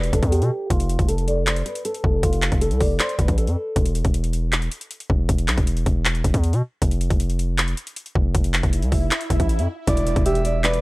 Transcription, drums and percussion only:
0.04 closed hi-hat medium
0.13 kick medium
0.13 closed hi-hat medium
0.23 kick medium
0.23 closed hi-hat medium
0.32 closed hi-hat medium
0.42 closed hi-hat soft
0.70 kick loud
0.70 closed hi-hat medium
0.80 closed hi-hat medium
0.89 closed hi-hat medium
0.99 kick medium
0.99 closed hi-hat medium
1.09 closed hi-hat medium
1.18 closed hi-hat medium
1.28 closed hi-hat medium
1.47 clap loud
1.47 closed hi-hat medium
1.56 closed hi-hat medium
1.66 closed hi-hat medium
1.75 closed hi-hat medium
1.85 closed hi-hat medium
1.94 closed hi-hat soft
2.04 kick loud
2.23 kick loud
2.23 closed hi-hat medium
2.33 closed hi-hat medium
2.42 clap loud
2.42 closed hi-hat medium
2.52 kick medium
2.52 closed hi-hat medium
2.61 closed hi-hat medium
2.71 closed hi-hat medium
2.81 kick medium
2.81 open hi-hat medium
3.00 clap loud
3.00 closed hi-hat medium
3.09 closed hi-hat medium
3.19 kick medium
3.19 closed hi-hat medium
3.28 kick medium
3.28 closed hi-hat medium
3.38 closed hi-hat medium
3.47 closed hi-hat soft
3.76 kick loud
3.76 closed hi-hat medium
3.86 closed hi-hat medium
3.95 closed hi-hat medium
4.05 kick medium
4.05 closed hi-hat medium
4.14 closed hi-hat medium
4.24 closed hi-hat medium
4.33 closed hi-hat medium
4.52 clap loud
4.52 closed hi-hat medium
4.62 closed hi-hat medium
4.71 closed hi-hat medium
4.81 closed hi-hat medium
4.91 closed hi-hat medium
5.00 closed hi-hat soft
5.10 kick loud
5.29 kick loud
5.29 closed hi-hat loud
5.38 closed hi-hat medium
5.48 clap loud
5.48 closed hi-hat medium
5.58 kick medium
5.58 closed hi-hat medium
5.67 closed hi-hat medium
5.77 closed hi-hat medium
5.86 kick medium
5.86 closed hi-hat medium
6.05 clap loud
6.05 closed hi-hat medium
6.15 closed hi-hat medium
6.24 kick medium
6.24 closed hi-hat medium
6.34 kick medium
6.34 closed hi-hat medium
6.44 closed hi-hat medium
6.53 closed hi-hat soft
6.82 kick loud
6.82 closed hi-hat medium
6.91 closed hi-hat medium
7.01 closed hi-hat medium
7.10 kick medium
7.10 closed hi-hat medium
7.20 closed hi-hat medium
7.30 closed hi-hat medium
7.39 closed hi-hat medium
7.58 clap loud
7.58 closed hi-hat medium
7.68 closed hi-hat medium
7.77 closed hi-hat medium
7.87 closed hi-hat medium
7.96 closed hi-hat medium
8.06 closed hi-hat soft
8.15 kick loud
8.35 kick medium
8.35 closed hi-hat loud
8.44 closed hi-hat medium
8.54 clap loud
8.54 closed hi-hat medium
8.63 kick medium
8.63 closed hi-hat medium
8.73 closed hi-hat medium
8.82 closed hi-hat medium
8.92 kick medium
8.92 open hi-hat medium
9.11 clap loud
9.11 closed hi-hat medium
9.21 closed hi-hat medium
9.30 kick medium
9.30 closed hi-hat medium
9.40 kick medium
9.40 closed hi-hat medium
9.49 closed hi-hat medium
9.59 closed hi-hat soft
9.87 kick loud
9.87 closed hi-hat loud
9.97 closed hi-hat medium
10.07 closed hi-hat medium
10.16 kick loud
10.16 closed hi-hat medium
10.26 closed hi-hat medium
10.35 closed hi-hat medium
10.45 closed hi-hat medium
10.64 clap loud
10.64 closed hi-hat medium
10.74 closed hi-hat medium

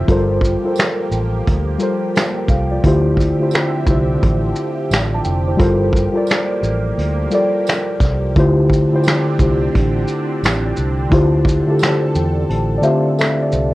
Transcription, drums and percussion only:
0.08 kick loud
0.08 closed hi-hat medium
0.41 kick medium
0.41 shaker soft
0.76 snare loud
0.76 closed hi-hat medium
0.76 tambourine medium
0.80 finger snap medium
1.12 shaker soft
1.47 kick medium
1.47 closed hi-hat medium
1.80 shaker soft
2.15 finger snap medium
2.15 snare loud
2.15 closed hi-hat medium
2.15 tambourine medium
2.48 kick loud
2.48 shaker soft
2.84 kick loud
2.84 closed hi-hat medium
3.17 kick medium
3.17 closed hi-hat medium
3.17 shaker soft
3.51 snare loud
3.51 closed hi-hat medium
3.51 tambourine medium
3.56 finger snap medium
3.87 kick loud
3.87 shaker soft
4.23 kick loud
4.23 closed hi-hat medium
4.56 shaker medium
4.91 finger snap medium
4.91 snare loud
4.91 closed hi-hat medium
4.91 tambourine medium
5.25 shaker soft
5.60 kick loud
5.60 closed hi-hat medium
5.93 kick medium
5.93 shaker medium
6.27 snare loud
6.27 closed hi-hat medium
6.27 tambourine medium
6.32 finger snap medium
6.64 shaker soft
6.99 closed hi-hat medium
7.32 closed hi-hat medium
7.32 shaker medium
7.67 finger snap medium
7.67 snare loud
7.67 closed hi-hat medium
7.67 tambourine medium
8.00 kick loud
8.00 snare soft
8.00 shaker soft
8.36 kick loud
8.36 closed hi-hat medium
8.69 kick medium
8.69 closed hi-hat medium
8.69 shaker medium
9.03 snare loud
9.03 closed hi-hat medium
9.03 tambourine medium
9.07 finger snap medium
9.39 kick loud
9.39 shaker medium
9.75 kick medium
9.75 closed hi-hat medium
10.07 closed hi-hat soft
10.07 shaker soft
10.43 finger snap medium
10.43 snare loud
10.43 closed hi-hat medium
10.43 tambourine medium
10.77 shaker soft
11.12 kick loud
11.12 closed hi-hat medium
11.45 kick medium
11.45 closed hi-hat medium
11.45 shaker medium
11.79 snare loud
11.79 closed hi-hat medium
11.79 tambourine medium
11.83 finger snap loud
12.15 shaker soft
12.50 closed hi-hat medium
12.83 shaker soft
13.19 finger snap medium
13.19 snare loud
13.19 closed hi-hat medium
13.19 tambourine medium
13.52 shaker soft

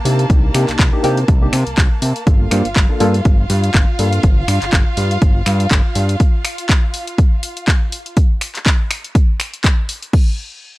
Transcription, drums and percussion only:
0.05 open hi-hat loud
0.19 closed hi-hat medium
0.30 kick loud
0.30 closed hi-hat medium
0.54 finger snap medium
0.54 open hi-hat loud
0.68 clap soft
0.68 closed hi-hat soft
0.79 kick loud
0.79 clap loud
0.79 closed hi-hat medium
1.04 open hi-hat medium
1.17 closed hi-hat medium
1.28 kick loud
1.28 closed hi-hat medium
1.53 finger snap medium
1.53 open hi-hat loud
1.67 closed hi-hat soft
1.78 kick loud
1.78 clap loud
1.78 closed hi-hat medium
2.02 open hi-hat loud
2.16 closed hi-hat medium
2.27 kick loud
2.27 closed hi-hat medium
2.51 finger snap medium
2.51 open hi-hat loud
2.65 closed hi-hat medium
2.76 kick loud
2.76 clap loud
2.76 closed hi-hat medium
3.00 open hi-hat medium
3.14 closed hi-hat medium
3.25 kick loud
3.25 closed hi-hat medium
3.50 open hi-hat loud
3.64 closed hi-hat medium
3.74 kick loud
3.74 clap loud
3.74 closed hi-hat medium
3.99 open hi-hat medium
4.13 closed hi-hat medium
4.23 kick loud
4.23 closed hi-hat medium
4.48 finger snap medium
4.48 open hi-hat loud
4.62 clap soft
4.62 closed hi-hat medium
4.73 kick medium
4.73 clap loud
4.73 closed hi-hat medium
4.97 open hi-hat medium
5.11 closed hi-hat medium
5.22 kick loud
5.22 closed hi-hat medium
5.46 finger snap medium
5.46 open hi-hat loud
5.60 closed hi-hat soft
5.71 kick loud
5.71 clap loud
5.71 closed hi-hat medium
5.95 open hi-hat medium
6.09 closed hi-hat medium
6.20 kick loud
6.20 closed hi-hat medium
6.45 finger snap medium
6.45 open hi-hat loud
6.58 closed hi-hat medium
6.69 kick loud
6.69 clap loud
6.69 closed hi-hat medium
6.94 open hi-hat medium
7.07 closed hi-hat medium
7.18 kick loud
7.18 closed hi-hat medium
7.43 open hi-hat loud
7.57 closed hi-hat medium
7.68 kick loud
7.68 clap loud
7.68 closed hi-hat medium
7.92 open hi-hat medium
8.06 closed hi-hat medium
8.17 kick loud
8.17 closed hi-hat medium
8.41 finger snap medium
8.41 open hi-hat loud
8.55 clap soft
8.55 closed hi-hat medium
8.66 kick loud
8.66 clap loud
8.66 closed hi-hat medium
8.91 finger snap medium
8.91 open hi-hat medium
9.04 closed hi-hat medium
9.15 kick loud
9.15 closed hi-hat medium
9.40 finger snap medium
9.40 open hi-hat loud
9.54 closed hi-hat medium
9.64 kick loud
9.64 clap loud
9.64 closed hi-hat medium
9.89 open hi-hat medium
10.03 closed hi-hat medium
10.13 kick loud
10.13 crash medium

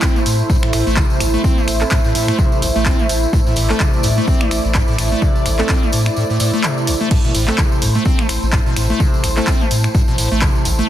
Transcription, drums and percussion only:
0.02 kick loud
0.02 clap loud
0.02 tambourine medium
0.16 tambourine soft
0.26 open hi-hat medium
0.26 tambourine medium
0.39 tambourine soft
0.50 kick loud
0.50 tambourine medium
0.62 finger snap medium
0.62 tambourine soft
0.73 finger snap medium
0.73 open hi-hat loud
0.73 tambourine medium
0.87 tambourine soft
0.96 kick loud
0.96 clap loud
0.96 tambourine medium
1.10 tambourine soft
1.20 finger snap medium
1.20 open hi-hat loud
1.20 tambourine medium
1.34 tambourine soft
1.44 kick loud
1.44 tambourine medium
1.58 tambourine soft
1.68 finger snap medium
1.68 open hi-hat loud
1.68 tambourine medium
1.81 clap soft
1.81 tambourine soft
1.91 kick loud
1.91 clap loud
1.91 tambourine soft
2.04 tambourine soft
2.15 open hi-hat medium
2.15 tambourine medium
2.28 finger snap medium
2.28 tambourine soft
2.39 kick loud
2.39 tambourine medium
2.52 tambourine soft
2.62 open hi-hat loud
2.62 tambourine loud
2.75 tambourine soft
2.86 kick loud
2.86 clap loud
2.86 tambourine soft
2.99 tambourine soft
3.09 open hi-hat medium
3.09 tambourine medium
3.23 tambourine soft
3.33 kick loud
3.33 tambourine medium
3.47 tambourine soft
3.56 open hi-hat loud
3.56 tambourine medium
3.70 clap soft
3.70 tambourine soft
3.80 kick loud
3.80 clap loud
3.80 tambourine soft
3.93 tambourine soft
4.03 open hi-hat medium
4.03 tambourine medium
4.18 tambourine soft
4.28 kick loud
4.28 tambourine medium
4.41 finger snap medium
4.41 tambourine soft
4.51 finger snap medium
4.51 open hi-hat loud
4.51 tambourine medium
4.65 tambourine soft
4.74 kick loud
4.74 clap loud
4.74 tambourine soft
4.88 tambourine soft
4.98 finger snap medium
4.98 open hi-hat medium
4.98 tambourine medium
5.12 tambourine soft
5.22 kick loud
5.22 tambourine soft
5.35 tambourine soft
5.46 finger snap medium
5.46 open hi-hat loud
5.46 tambourine medium
5.59 clap soft
5.59 tambourine soft
5.69 kick loud
5.69 clap loud
5.69 tambourine medium
5.83 tambourine soft
5.92 open hi-hat medium
5.92 tambourine medium
6.06 finger snap medium
6.06 tambourine soft
6.16 tambourine medium
6.30 tambourine soft
6.40 open hi-hat loud
6.40 tambourine medium
6.53 tambourine soft
6.63 clap loud
6.63 tambourine medium
6.78 tambourine soft
6.87 open hi-hat medium
6.87 tambourine medium
7.00 tambourine soft
7.11 kick loud
7.11 tambourine medium
7.11 crash medium
7.24 tambourine soft
7.35 open hi-hat loud
7.35 tambourine medium
7.48 clap soft
7.48 tambourine soft
7.58 kick loud
7.58 clap loud
7.58 tambourine medium
7.72 tambourine soft
7.82 open hi-hat medium
7.82 tambourine medium
7.95 tambourine soft
8.05 kick loud
8.05 tambourine soft
8.19 finger snap medium
8.19 tambourine soft
8.29 finger snap medium
8.29 open hi-hat loud
8.29 tambourine medium
8.43 tambourine soft
8.52 kick loud
8.52 clap loud
8.52 tambourine medium
8.66 tambourine soft
8.76 finger snap medium
8.76 open hi-hat medium
8.76 tambourine loud
8.89 tambourine soft
9.00 kick loud
9.00 tambourine medium
9.14 tambourine soft
9.24 finger snap medium
9.24 open hi-hat loud
9.24 tambourine medium
9.37 clap soft
9.37 tambourine soft
9.47 kick loud
9.47 clap loud
9.47 tambourine medium
9.61 tambourine soft
9.71 open hi-hat loud
9.71 tambourine medium
9.84 finger snap medium
9.84 tambourine soft
9.95 kick loud
9.95 tambourine medium
10.08 tambourine soft
10.18 open hi-hat loud
10.18 tambourine loud
10.31 tambourine soft
10.41 kick loud
10.41 clap loud
10.41 tambourine medium
10.55 tambourine soft
10.65 open hi-hat loud
10.65 tambourine medium
10.79 tambourine soft

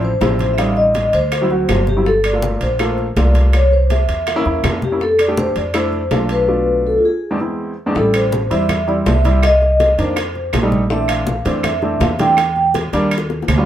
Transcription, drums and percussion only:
0.02 high bongo soft
0.02 high conga soft
0.21 high bongo medium
0.21 low bongo medium
0.21 high conga medium
0.21 high timbale medium
0.21 low timbale medium
0.39 high conga medium
0.39 high timbale medium
0.58 high bongo medium
0.58 high conga soft
0.58 high timbale medium
0.58 claves medium
0.76 high bongo soft
0.76 high conga soft
0.95 high bongo medium
0.95 high conga medium
0.95 high timbale medium
0.95 low timbale medium
1.13 high bongo soft
1.13 high timbale medium
1.32 high bongo medium
1.32 high conga soft
1.32 high timbale medium
1.32 claves medium
1.50 high bongo soft
1.50 high conga soft
1.69 high bongo medium
1.69 low bongo medium
1.69 high conga medium
1.69 high timbale medium
1.69 low timbale medium
1.69 claves medium
1.87 high conga medium
2.06 high bongo medium
2.06 high conga soft
2.24 high bongo soft
2.24 high conga soft
2.24 high timbale medium
2.24 claves medium
2.42 high bongo medium
2.42 high conga medium
2.42 low timbale medium
2.61 high bongo soft
2.61 high conga soft
2.61 high timbale medium
2.79 high bongo medium
2.79 high conga soft
2.79 high timbale medium
2.79 claves medium
2.98 high bongo soft
2.98 high conga soft
3.16 high bongo medium
3.16 low bongo medium
3.16 high conga medium
3.16 high timbale medium
3.16 low timbale medium
3.35 high conga medium
3.35 high timbale medium
3.53 high bongo medium
3.53 high conga soft
3.53 high timbale medium
3.53 claves medium
3.72 high bongo soft
3.72 high conga soft
3.90 high bongo medium
3.90 high conga medium
3.90 high timbale medium
3.90 low timbale medium
4.09 high bongo soft
4.09 high timbale medium
4.27 high bongo medium
4.27 high conga soft
4.27 high timbale medium
4.27 claves medium
4.45 high bongo soft
4.45 high conga soft
4.64 high bongo medium
4.64 low bongo medium
4.64 high conga medium
4.64 high timbale medium
4.64 low timbale medium
4.64 claves medium
4.82 high conga medium
5.01 high bongo medium
5.01 high conga soft
5.19 high bongo soft
5.19 high conga soft
5.19 high timbale loud
5.19 claves medium
5.37 high bongo medium
5.37 high conga medium
5.37 low timbale medium
5.56 high bongo soft
5.56 high conga soft
5.56 high timbale medium
5.74 high bongo medium
5.74 high conga soft
5.74 high timbale medium
5.74 claves medium
5.93 high bongo soft
5.93 high conga soft
6.11 high bongo medium
6.11 low bongo medium
6.11 high conga medium
6.11 high timbale medium
6.11 low timbale medium
6.29 high timbale medium
7.96 high bongo medium
7.96 high conga soft
8.14 high bongo soft
8.14 high conga soft
8.14 high timbale medium
8.14 claves medium
8.32 high bongo medium
8.32 high conga medium
8.32 low timbale medium
8.51 high bongo soft
8.51 high conga soft
8.51 high timbale medium
8.69 high bongo medium
8.69 high conga soft
8.69 low conga medium
8.69 high timbale medium
8.69 claves medium
8.88 high bongo soft
8.88 high conga soft
9.06 high bongo medium
9.06 low bongo medium
9.06 high conga medium
9.06 high timbale medium
9.06 low timbale medium
9.25 high conga medium
9.25 high timbale medium
9.43 high bongo medium
9.43 high conga soft
9.43 high timbale medium
9.43 claves medium
9.62 high bongo soft
9.62 high conga soft
9.80 high bongo medium
9.80 high conga medium
9.80 high timbale medium
9.80 low timbale medium
9.98 high bongo soft
9.98 high timbale medium
10.16 high bongo medium
10.16 high conga soft
10.16 high timbale loud
10.16 claves medium
10.35 high bongo soft
10.35 high conga soft
10.53 high bongo medium
10.53 low bongo medium
10.53 high conga medium
10.53 high timbale medium
10.53 low timbale medium
10.53 claves medium
10.72 high conga medium
10.90 high bongo medium
10.90 high conga soft
11.08 high bongo soft
11.08 high conga soft
11.08 high timbale loud
11.08 claves medium
11.27 high bongo medium
11.27 high conga medium
11.27 low timbale medium
11.45 high bongo soft
11.45 high conga soft
11.45 high timbale medium
11.63 high bongo medium
11.63 high conga soft
11.63 low conga medium
11.63 high timbale medium
11.63 claves medium
11.82 high bongo soft
11.82 high conga soft
12.00 high bongo medium
12.00 low bongo medium
12.00 high conga medium
12.00 high timbale medium
12.00 low timbale medium
12.19 high conga medium
12.19 high timbale medium
12.37 high bongo medium
12.37 high conga soft
12.37 high timbale medium
12.37 claves medium
12.56 high bongo soft
12.56 high conga soft
12.74 high bongo medium
12.74 high conga medium
12.74 high timbale medium
12.74 low timbale medium
12.93 high bongo medium
12.93 high timbale medium
13.11 high conga soft
13.11 high timbale medium
13.11 claves medium
13.18 high bongo medium
13.30 high bongo medium
13.30 high conga soft
13.42 low bongo medium
13.48 high conga medium
13.48 high timbale loud
13.48 low timbale medium
13.48 claves medium

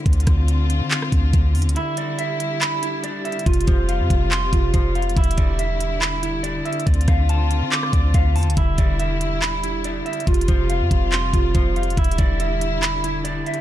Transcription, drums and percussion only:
0.06 kick loud
0.06 closed hi-hat medium
0.13 closed hi-hat medium
0.20 closed hi-hat medium
0.27 kick loud
0.27 cross-stick medium
0.27 closed hi-hat medium
0.48 closed hi-hat medium
0.70 closed hi-hat medium
0.91 clap loud
0.91 closed hi-hat medium
1.02 cross-stick medium
1.12 kick loud
1.12 closed hi-hat medium
1.33 kick medium
1.33 closed hi-hat medium
1.55 closed hi-hat soft
1.55 open hi-hat medium
1.62 closed hi-hat medium
1.69 closed hi-hat medium
1.76 closed hi-hat medium
1.97 closed hi-hat medium
2.19 closed hi-hat medium
2.40 closed hi-hat medium
2.61 clap loud
2.61 closed hi-hat medium
2.83 closed hi-hat medium
3.04 closed hi-hat medium
3.25 closed hi-hat soft
3.32 closed hi-hat medium
3.39 closed hi-hat medium
3.46 kick loud
3.46 closed hi-hat medium
3.53 closed hi-hat medium
3.61 closed hi-hat medium
3.67 kick loud
3.67 closed hi-hat medium
3.89 closed hi-hat medium
4.10 kick loud
4.10 closed hi-hat medium
4.31 clap loud
4.31 closed hi-hat medium
4.53 kick loud
4.53 closed hi-hat medium
4.74 kick medium
4.74 closed hi-hat medium
4.95 closed hi-hat soft
5.02 closed hi-hat medium
5.09 closed hi-hat medium
5.17 kick loud
5.17 closed hi-hat medium
5.24 closed hi-hat medium
5.31 closed hi-hat medium
5.38 kick loud
5.38 closed hi-hat medium
5.59 closed hi-hat medium
5.80 closed hi-hat medium
6.02 clap loud
6.02 closed hi-hat medium
6.23 closed hi-hat medium
6.44 closed hi-hat medium
6.65 closed hi-hat soft
6.73 closed hi-hat medium
6.80 closed hi-hat medium
6.87 kick loud
6.87 closed hi-hat medium
6.94 closed hi-hat medium
7.01 closed hi-hat medium
7.08 kick loud
7.08 cross-stick medium
7.08 closed hi-hat medium
7.29 closed hi-hat medium
7.51 closed hi-hat medium
7.72 clap loud
7.72 closed hi-hat medium
7.83 cross-stick medium
7.93 kick loud
7.93 closed hi-hat medium
8.14 kick medium
8.14 closed hi-hat medium
8.36 closed hi-hat soft
8.36 open hi-hat medium
8.43 closed hi-hat medium
8.50 closed hi-hat medium
8.57 kick loud
8.57 closed hi-hat medium
8.78 kick loud
8.78 closed hi-hat medium
8.99 closed hi-hat medium
9.21 closed hi-hat medium
9.42 clap loud
9.42 closed hi-hat medium
9.64 closed hi-hat medium
9.84 closed hi-hat medium
10.06 closed hi-hat soft
10.13 closed hi-hat medium
10.20 closed hi-hat medium
10.27 kick loud
10.27 closed hi-hat medium
10.34 closed hi-hat medium
10.41 closed hi-hat medium
10.48 kick loud
10.48 closed hi-hat medium
10.70 closed hi-hat medium
10.91 kick loud
10.91 closed hi-hat medium
11.12 clap loud
11.12 closed hi-hat medium
11.34 kick loud
11.34 closed hi-hat medium
11.55 kick medium
11.55 closed hi-hat medium
11.76 closed hi-hat soft
11.83 closed hi-hat medium
11.90 closed hi-hat medium
11.97 kick loud
11.97 closed hi-hat medium
12.04 closed hi-hat medium
12.11 closed hi-hat medium
12.18 kick loud
12.18 closed hi-hat medium
12.40 closed hi-hat medium
12.61 closed hi-hat medium
12.83 clap loud
12.83 closed hi-hat medium
13.04 closed hi-hat medium
13.25 closed hi-hat medium
13.46 closed hi-hat soft
13.54 closed hi-hat medium

